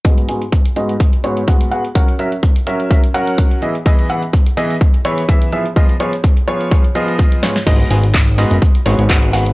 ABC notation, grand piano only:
X:1
M:4/4
L:1/8
Q:"Swing 16ths" 1/4=126
K:G#m
V:1 name="Grand piano"
[G,,B,FGd] [G,,B,FGg] z [G,,B,FGd] z [G,,B,FGc] [G,,B,FGf] [B,FGf] | [F,CFAf] [F,CFAe] z [F,CFAe] [F,CFAe] [F,CFAf]2 [E,B,EGd] | [E,B,EGd] [E,B,EGf] z [E,B,EGd] z [E,B,EGc] [E,B,EGe] [^E,B,=EGe] | [^E,B,^EGd] [E,B,EGc] z [E,B,EGc] [E,B,EGc] [E,B,EGd]2 [G,,B,EGc] |
[G,,B,FGd] [G,,B,FGg] z [G,,B,FGd] z [G,,B,FGc] [G,,B,FGf] [B,FGf] |]